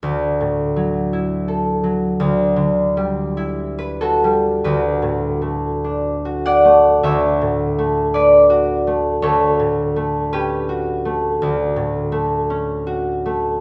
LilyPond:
<<
  \new Staff \with { instrumentName = "Harp" } { \time 4/4 \key d \major \tempo 4 = 54 r2. r8 <fis' a'>8 | <fis' b'>4. <d'' fis''>8 <cis'' e''>4 <b' d''>4 | <a' cis''>4 <g' b'>2. | }
  \new Staff \with { instrumentName = "Harp" } { \time 4/4 \key d \major \tuplet 3/2 { d,8 a,8 fis8 e'8 a'8 fis8 d,8 d8 g8 e'8 b'8 g8 } | \tuplet 3/2 { d,8 a,8 a8 d'8 fis'8 a8 d,8 a,8 a8 d'8 fis'8 a8 } | \tuplet 3/2 { d,8 a,8 a8 cis'8 fis'8 a8 d,8 a,8 a8 cis'8 fis'8 a8 } | }
>>